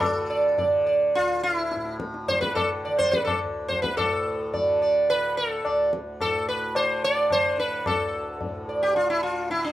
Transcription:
Already playing: D2 A2 D3
0.00 D3 A4, tabla na, tabla ge
0.30 D5
0.58 D3 D5, tabla tin, tabla ge
0.86 D5
1.14 D2 F4, tabla tin
1.43 E4
1.71 A2, tabla te
1.85 tabla te
2.00 tabla ke
2.14 tabla te
2.28 D3 C5, tabla tin, tabla ge
2.41 B4, tabla ke
2.55 A4, tabla na, tabla ge
2.85 D3 D5
2.98 C5, tabla tin, tabla ge
3.11 B4, tabla ke
3.25 A4, tabla na, tabla ge
3.44 D2
3.68 C5, tabla tin, tabla ge
3.82 B4, tabla ke
3.97 A2 A4, tabla na, tabla ge
4.53 D3 D5, tabla tin, tabla ge
4.82 D5
5.09 D3 B4, tabla tin
5.37 A4
5.65 D2 D5, tabla na
5.93 tabla ke
6.21 A2 A4, tabla na, tabla ge
6.48 B4
6.75 D3 C5, tabla na
7.04 D5
7.30 D3 C5, tabla na, tabla ge
7.58 B4, tabla te
7.86 D2 A4, tabla na, tabla ge
8.41 A2, tabla tin, tabla ge
8.69 D5
8.83 G4
8.95 D3 F4, tabla tin
9.10 E4
9.23 F4
9.50 D3 E4, tabla te
9.64 D4, tabla te

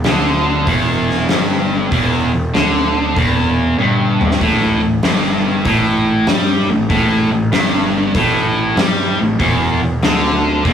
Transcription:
0.04 D2 D3, snare, open hi-hat
0.66 E1 E2, kick, open hi-hat
1.10 snare
1.29 G1 G2, snare, open hi-hat
1.91 E1 E2, kick, open hi-hat
2.34 E1 E2
2.54 D2 D3, snare, open hi-hat
3.17 E1 E2, kick, open hi-hat
3.78 G1 G2, high tom
4.21 mid tom
4.31 snare
4.41 A1 A2, kick, open hi-hat
4.81 A1 A2
5.03 G1 G2, snare, open hi-hat
5.65 A1 A2, kick, open hi-hat
6.27 G2 G3, snare, open hi-hat
6.69 A1 A2
6.89 A1 A2, kick, open hi-hat
7.31 A1 A2
7.51 G1 G2, snare, open hi-hat
8.15 A1 A2, kick, open hi-hat
8.76 G2 G3, snare, open hi-hat
9.19 A1 A2
9.39 E1 E2, kick, open hi-hat
9.83 E1 E2
10.03 D2 D3, snare, open hi-hat
10.65 E1 E2, kick, open hi-hat

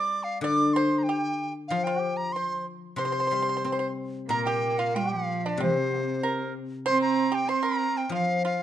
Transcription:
Already playing: G3 D5 D6
0.23 F5
0.41 D3 D5 D6
0.73 C5 C6
0.98 A#5
1.03 G5
1.09 G4
1.68 F3 F4 F5
1.84 G4 G5
2.17 A#5
2.33 C5 C6
2.96 C3 C5 C6
3.05 C5
3.12 C5
3.20 C5
3.27 G3 C5
3.33 C5
3.42 C5
3.49 C5
3.57 C5
3.64 C4 C5
3.72 C5
3.79 C5
4.29 A#2 A#3 A#4 A#5
4.45 G4 G5
4.78 F4 F5
4.95 G3 G4 G5
5.12 F3 F5
5.45 D4 D5
5.58 C3 C4
5.63 C5
5.98 A#3
6.23 A#4
6.86 C4 C5 C6
7.01 A#5
7.32 G4 G5
7.48 C4 C5 C6
7.63 A#4 A#5
7.97 G5
8.09 F3 F4
8.14 F5
8.45 F4 F5

